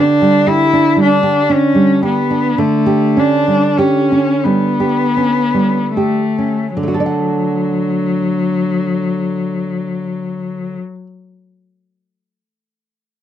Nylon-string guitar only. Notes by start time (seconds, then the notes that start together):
Already playing: D3 G4
0.00 D4
0.22 G3
0.47 G4
0.73 D4
0.97 G3
1.23 G4
1.50 D4
1.75 G3
2.03 G4
2.30 D4
2.58 D3
2.86 G4
3.17 C#4
3.48 G3
3.79 G4
4.12 C#4
4.45 G3
4.80 G4
5.17 C#4
5.54 G3
5.97 G4
6.38 C#4
6.77 D3
6.83 A3
6.88 F#4
6.94 A4
7.00 D5
7.06 F#5